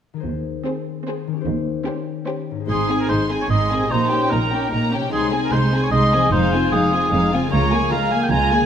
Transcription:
0.14 D#3 D#4 G#4
0.20 C5
0.25 D#2
0.65 C4 G#4 C5
1.06 C4 G#4 C5
1.27 D#3
1.32 C#4
1.36 G4
1.41 C5
1.46 D#2
1.86 C#4 G4 C5
2.26 C#4 G4 C5
2.51 G#2
2.56 D#4
2.60 G#4
2.64 G#1 G#3 C5
2.69 G#2 D#4 G#4 C6
2.89 C4 G#4 G#5
3.00 A#4
3.09 G#1 G#2 G#3 D#4 C5 C6
3.30 C4 G#4 G#5
3.41 C#5
3.50 G#1 G#2 G#3 D#4 D#5 C6
3.70 A#2 C4 G#4 G#5
3.77 D#4
3.82 G4
3.86 C#5
3.91 A#1 A#2 A#3 D#4 C5 A#5
4.10 C#4 G4 G5
4.30 A#1 A#2 A#3 D#4 A#4 A#5
4.52 C#4 G4 G5
4.72 A#1 A#2 A#3 D#4 A#5
4.91 C3 C#4 G4 G5
5.00 D#4
5.04 G#4
5.09 C2 C3 G#3 C5
5.13 D#4 G#4 C6
5.32 C4 G#4 G#5
5.45 A#4
5.52 C2 C3 G#3 D#4 C5 C6
5.73 C4 G#4 G#5
5.83 C#5
5.91 C2 C3 G#3 D#4 D#5 C6
6.13 F3 C4 G#4 G#5
6.20 D#4
6.24 G#4
6.28 C5
6.33 F1 F2 G#3 D#4 F5
6.53 C4 F4 G#5
6.72 F1 F2 G#3 D#4 G#4 F5
6.92 C4 F4 G#5
7.12 F1 F2 G#3 D#4 F5
7.32 C#3 C4 F4 G#5
7.38 F4
7.43 G#4
7.47 A#4 C#5
7.52 C#2 G#3 F4 A#5
7.71 A#3 G#4 G#5
7.90 C#2 G#3 F4 F5 A#5
8.11 A#3 G#4 G#5
8.23 G5
8.30 C#2 G#3 F4 G#5 A#5
8.51 D3 A#3 G#4 G#5
8.58 F4
8.62 G#4

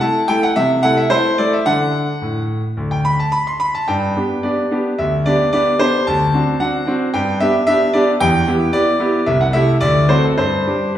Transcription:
0.01 A3 E4 A4 A5
0.28 A3 E4 A4 G5
0.43 F#5
0.56 C3 E5
0.83 A3 E4 A4 F#5
0.97 E5
1.10 A3 E4 A4 C5
1.38 A3 E4 A4 D5
1.53 E5
1.66 D3 D4 A4 F#5
2.22 A2
2.77 D2
2.91 G5
3.05 B5
3.19 A5
3.32 B5
3.47 C6
3.60 B5
3.75 A5
3.88 G2 G5
4.17 B3 D4 G4
4.43 B3 D4 G4 D5
4.71 B3 D4 G4
4.98 D2 E5
5.26 B3 D4 G4 D5
5.53 B3 D4 G4 D5
5.79 B3 D4 G4 C5
6.07 D2 A5
6.34 C4 D4 F#4
6.60 C4 D4 F#4 F#5
6.87 C4 D4 F#4
7.14 G2 G5
7.40 B3 D4 G4 E5
7.67 B3 D4 G4 E5
7.93 B3 D4 G4 D5
8.20 E2 G5
8.48 B3 E4 G4
8.73 B3 E4 G4 D5
9.00 B3 E4 G4
9.26 C2 E5
9.41 F#5
9.53 A3 E4 G4 E5
9.80 D2 D5
10.09 A3 C4 F#4 C5
10.24 A4
10.38 G2 C5
10.66 G3 D4 G4

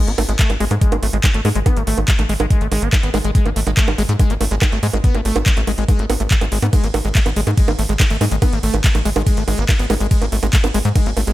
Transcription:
0.07 G#1 B3, closed hi-hat
0.18 G#1 A3, open hi-hat, high bongo
0.29 G#1 G#3, closed hi-hat
0.39 A3, kick, clap, closed hi-hat
0.50 G#1 F#3, closed hi-hat, high bongo
0.60 G#1 G#3, open hi-hat
0.71 G#2 G#3, closed hi-hat, high bongo
0.81 G#3, kick, closed hi-hat
0.92 G#1 B3, closed hi-hat, high bongo
1.03 G#1 A3, open hi-hat
1.13 G#1 G#3, closed hi-hat
1.24 G#3, kick, clap, closed hi-hat, high bongo
1.34 G#1 A3, closed hi-hat
1.45 G#2 G#3, open hi-hat, high bongo
1.55 G#1 G#3, closed hi-hat
1.66 B3, kick, closed hi-hat, high bongo
1.76 G#1 A3, closed hi-hat
1.87 G#1 A3, open hi-hat
1.98 G#1 G#3, closed hi-hat, high bongo
2.08 G#3, kick, clap, closed hi-hat
2.19 A1 A3, closed hi-hat, high bongo
2.29 G#1 G#3, open hi-hat
2.40 G#1 G#3, closed hi-hat, high bongo
2.50 G#3, kick, closed hi-hat
2.61 G#1 A3, closed hi-hat
2.72 G#1 G#3, open hi-hat, high bongo
2.82 G#1 B3, closed hi-hat
2.93 G#3, kick, clap, closed hi-hat, high bongo
3.03 G#1 B3, closed hi-hat
3.14 G#1 G#3, open hi-hat, high bongo
3.24 G#1 G#3, closed hi-hat
3.35 G#3, kick, closed hi-hat
3.46 G#1 B3, closed hi-hat, high bongo
3.56 G#1 A3, open hi-hat
3.67 G#1 G#3, closed hi-hat, high bongo
3.77 A3, kick, clap, closed hi-hat
3.88 G#1 F#3, closed hi-hat, high bongo
3.98 G#1 G#3, open hi-hat
4.09 G#2 G#3, closed hi-hat
4.19 G#3, kick, closed hi-hat, high bongo
4.30 G#1 B3, closed hi-hat
4.41 G#1 A3, open hi-hat, high bongo
4.51 G#1 G#3, closed hi-hat
4.62 G#3, kick, clap, closed hi-hat, high bongo
4.72 G#1 A3, closed hi-hat
4.83 G#2 G#3, open hi-hat
4.93 G#1 G#3, closed hi-hat, high bongo
5.04 B3, kick, closed hi-hat
5.15 G#1 A3, closed hi-hat, high bongo
5.25 G#1 A3, open hi-hat
5.36 G#1 G#3, closed hi-hat, high bongo
5.46 G#3, kick, clap, closed hi-hat
5.57 A1 A3, closed hi-hat
5.67 G#1 G#3, open hi-hat, high bongo
5.78 G#1 G#3, closed hi-hat
5.88 G#3, kick, closed hi-hat, high bongo
5.99 G#1 A3, closed hi-hat
6.10 G#1 B3, open hi-hat, high bongo
6.20 G#1 A3, closed hi-hat
6.31 G#3, kick, clap, closed hi-hat
6.41 G#1 G#3, closed hi-hat, high bongo
6.52 G#1 G#3, open hi-hat
6.62 G#2 B3, closed hi-hat, high bongo
6.73 G#3, kick, closed hi-hat, ride, high bongo
6.84 G#1 B3, closed hi-hat
6.94 G#1 A3, open hi-hat, high bongo
7.05 G#1 G#3, closed hi-hat
7.15 A3, kick, clap, closed hi-hat, ride
7.26 G#1 B3, closed hi-hat, high bongo
7.36 G#1 G#3, open hi-hat
7.47 G#2 G#3, closed hi-hat, high bongo
7.57 G#3, kick, closed hi-hat, ride
7.68 G#1 B3, closed hi-hat, high bongo
7.79 G#1 A3, open hi-hat
7.89 G#1 G#3, closed hi-hat
8.00 G#3, kick, clap, closed hi-hat, ride, high bongo
8.10 G#1 A3, closed hi-hat
8.21 G#2 G#3, open hi-hat, high bongo
8.31 G#1 G#3, closed hi-hat
8.42 B3, kick, closed hi-hat, ride, high bongo
8.53 G#1 A3, closed hi-hat
8.63 G#1 A3, open hi-hat
8.74 G#1 G#3, closed hi-hat, high bongo
8.84 G#3, kick, clap, closed hi-hat, ride
8.95 A1 A3, closed hi-hat, high bongo
9.05 G#1 G#3, open hi-hat
9.16 G#1 G#3, closed hi-hat, high bongo
9.27 G#3, kick, closed hi-hat, ride
9.37 G#1 A3, closed hi-hat
9.48 G#1 G#3, open hi-hat, high bongo
9.58 G#1 B3, closed hi-hat
9.69 G#3, kick, clap, closed hi-hat, ride, high bongo
9.79 G#1 B3, closed hi-hat
9.90 G#1 G#3, open hi-hat, high bongo
10.00 G#1 G#3, closed hi-hat
10.11 G#3, kick, closed hi-hat, ride
10.22 G#1 B3, closed hi-hat, high bongo
10.32 G#1 A3, open hi-hat
10.43 G#1 G#3, closed hi-hat, high bongo
10.53 A3, kick, clap, closed hi-hat, ride
10.64 G#1 B3, closed hi-hat, high bongo
10.74 G#1 G#3, open hi-hat
10.85 G#2 G#3, closed hi-hat
10.96 G#3, kick, closed hi-hat, ride, high bongo
11.06 G#1 B3, closed hi-hat
11.17 G#1 A3, open hi-hat, high bongo
11.27 G#1 G#3, closed hi-hat

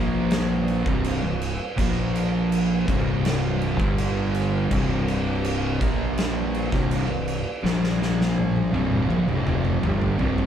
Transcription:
Already playing: A#1 A#2 F3 A#3
0.31 snare, crash
0.68 crash
0.86 C1 C2 G2 C3, kick
1.05 crash
1.23 C1 C2 G2
1.42 crash
1.76 A#1 A#2 F3 A#3 F4 C5, kick, crash
2.16 crash
2.52 crash
2.87 C1 C2 G2 C3 G4, kick, crash
3.25 snare, crash
3.61 crash
3.79 G1 G2 D3 G3, kick
3.98 crash
4.35 crash
4.70 C1 C2 G2 C3 C4 G4 D5, kick, crash
5.08 crash
5.45 crash
5.80 A#1 A#2 F3 A#3, kick, crash
6.18 snare, crash
6.55 crash
6.72 C1 C2 G2 C3, kick, snare
6.91 crash
7.08 C1 C2 G2
7.28 crash
7.63 A#1 A#2 F3 A#3 F4 C5, snare
7.84 snare
8.02 snare
8.21 snare
8.38 high tom
8.56 high tom
8.73 C1 C2 G2 C3 C4 G4 D5, high tom
8.92 mid tom
9.09 A#1 A#2 F3, mid tom
9.27 C1 C2 G2, mid tom
9.45 F1 F2 C3 F3, mid tom
9.65 mid tom
9.82 G1 G2 D3 G3, mid tom
10.01 floor tom
10.19 C1 C2 G2 C3, floor tom
10.38 floor tom

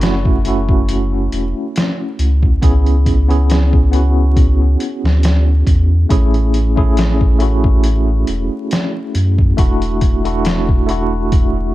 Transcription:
Already playing: F#1 A3 C#4 E4 F#4
0.01 snare, closed hi-hat
0.25 kick
0.44 A3 C#4 E4 F#4, closed hi-hat
0.69 kick
0.89 closed hi-hat
1.32 E1, closed hi-hat
1.76 snare, closed hi-hat
2.19 C#2, closed hi-hat
2.43 kick
2.62 C#2 B3 C#4 E4 G#4, kick, closed hi-hat
2.86 closed hi-hat
3.06 kick, closed hi-hat
3.28 B3 C#4 E4 G#4, closed hi-hat
3.50 snare, closed hi-hat
3.73 kick
3.91 B3 C#4 E4, closed hi-hat
3.96 F#4
4.36 kick, closed hi-hat
4.80 closed hi-hat
5.04 D2, snare
5.23 snare, closed hi-hat
5.67 E2, kick, closed hi-hat
6.09 A1 A3 C#4 E4 G#4, kick, closed hi-hat
6.34 closed hi-hat
6.54 closed hi-hat
6.76 A3 C#4 E4 G#4, kick
6.97 snare, closed hi-hat
7.21 kick
7.39 A3 C#4 E4 F#4, closed hi-hat
7.64 kick
7.84 closed hi-hat
8.27 E1, closed hi-hat
8.71 snare, closed hi-hat
9.15 F#2, closed hi-hat
9.38 kick
9.57 E1 A3 D4 E4 F#4, kick, closed hi-hat
9.82 closed hi-hat
10.01 kick, closed hi-hat
10.24 A3 D4 E4 F#4, closed hi-hat
10.45 snare, closed hi-hat
10.69 kick
10.87 A3 D4 E4 F#4, closed hi-hat
11.32 kick, closed hi-hat

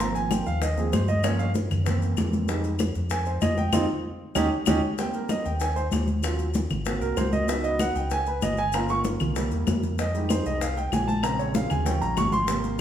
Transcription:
Already playing: G#1
0.00 F3 A#3 C4 A#5, high bongo, high conga, maracas
0.15 G#5, high bongo, high conga, maracas
0.31 G5, high bongo, high conga, claves, maracas
0.46 D#2 F5, high bongo, high conga, maracas
0.62 D#5, high bongo, high conga, maracas
0.76 F3 A#3 C4 G#4, high bongo, high conga, maracas
0.93 G2 C5, high bongo, low bongo, high conga, claves, maracas
1.08 D#5, high conga, maracas
1.23 F3 A#3 C#4 C#5, high bongo, high conga, claves, maracas
1.39 F5, high bongo, high conga, maracas
1.55 high bongo, high conga, maracas
1.70 F#2, high bongo, high conga, low conga, claves, maracas
1.85 E3 A#3 C4, high bongo, high conga, low conga, maracas
2.02 high bongo, high conga, maracas
2.17 F2, high bongo, low bongo, high conga, claves, maracas
2.33 high conga, maracas
2.48 G3 G#3 D#4, high bongo, high conga, maracas
2.64 high bongo, high conga, maracas
2.79 high bongo, high conga, claves, maracas
2.95 F2, high bongo, high conga, maracas
3.10 G#5, high bongo, high conga, maracas
3.26 C5, high bongo, high conga, maracas
3.41 F2 D#5, high bongo, low bongo, high conga, claves, maracas
3.57 G5, high conga, maracas
3.73 F2 C4 D#4 F4, low bongo, high conga, claves, maracas
4.35 D#2 C#4 D#4 G4, low bongo, high conga, claves, maracas
4.66 D#2 C#4 D#4 G4, low bongo, high conga, claves, maracas
4.98 G3 A#3 C4 G5, high bongo, high conga, maracas
5.13 A#4, high bongo, high conga, maracas
5.29 D#5, high bongo, high conga, claves, maracas
5.45 D#2 G5, high bongo, high conga, maracas
5.60 G#5, high bongo, high conga, maracas
5.76 C5, high bongo, high conga, maracas
5.92 D#2, high bongo, low bongo, high conga, claves, maracas
6.07 high conga, maracas
6.23 F#3 C#4 F4, high bongo, high conga, claves, maracas
6.39 high bongo, high conga, maracas
6.54 high bongo, high conga, maracas
6.70 G#1, high bongo, high conga, low conga, claves, maracas
6.85 A#3 C4 F#4, high bongo, high conga, maracas
7.01 C2 A#4, high bongo, high conga, maracas
7.17 C#2 C5, high bongo, low bongo, high conga, claves, maracas
7.33 D#5, high conga, maracas
7.48 B3 D#4 E4 F#4 E5, high bongo, high conga, maracas
7.64 D#5, high bongo, high conga, maracas
7.79 F#5, high bongo, high conga, claves, maracas
7.95 C#2 G5, high bongo, high conga, maracas
8.10 G#5, high bongo, high conga, maracas
8.26 B4, high bongo, high conga, maracas
8.42 G1 D#5, high bongo, low bongo, high conga, claves, maracas
8.57 G#5, maracas
8.72 A#3 C#4 F4 A#5, high bongo, high conga, claves, maracas
8.89 C#6, high bongo, high conga, maracas
9.04 high bongo, high conga, maracas
9.20 C2, high bongo, high conga, low conga, claves, maracas
9.36 G3 A#3 E4, high bongo, high conga, maracas
9.51 E2, high bongo, high conga, maracas
9.67 F2, high bongo, low bongo, high conga, claves, maracas
9.83 high conga, maracas
9.99 D#5, high bongo, high conga, maracas
10.14 G3 G#3 D#4 G4, high bongo, high conga, maracas
10.29 C5, high bongo, high conga, claves, maracas
10.46 C2 D#5, high bongo, high conga, maracas
10.61 F5, high bongo, high conga, maracas
10.77 G5, high bongo, high conga, maracas
10.92 A#1 G#5, high bongo, low bongo, high conga, claves, maracas
11.08 A5, high conga, maracas
11.23 C#3 G#3 C4 A#5, high bongo, claves, maracas
11.39 C#5, high bongo, maracas
11.55 F5, high bongo, high conga, maracas
11.70 D#2 G#5, high bongo, high conga, low conga, claves, maracas
11.85 F3 G3 C#4 G5, high bongo, high conga, maracas
12.01 A#1 A#5, high bongo, high conga, maracas
12.17 G#1 C#6, high bongo, low bongo, high conga, claves, maracas
12.32 C6, high conga, maracas
12.47 C3 G3 A#3, high bongo, high conga, maracas
12.64 high bongo, high conga, maracas

